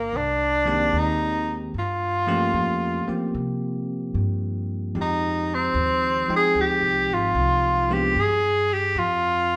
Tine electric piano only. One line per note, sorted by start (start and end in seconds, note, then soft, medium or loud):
0.65 1.67 D#3 medium
0.65 1.67 G#3 medium
0.65 1.67 A#3 medium
0.65 1.67 C4 medium
0.65 1.68 G4 medium
2.27 2.50 F3 medium
2.27 2.51 A3 medium
2.27 2.51 A#3 medium
2.27 2.51 C#4 medium
2.27 2.51 G4 medium
3.08 4.09 F3 medium
3.08 4.09 A#3 medium
3.08 4.09 C4 soft
3.08 4.10 F4 soft
3.08 4.09 G4 medium
4.95 5.43 F3 soft
4.95 5.43 G#3 soft
4.95 5.43 C4 soft
4.95 5.44 D#4 soft
4.95 5.44 G4 medium
6.28 6.52 F3 medium
6.28 6.53 G#3 medium
6.28 6.53 C4 medium
6.28 6.53 D#4 medium
6.28 6.53 G5 medium
7.89 8.13 F3 medium
7.89 8.14 G#3 medium
7.89 8.14 B3 medium
7.89 8.14 D4 medium
7.89 8.14 G4 medium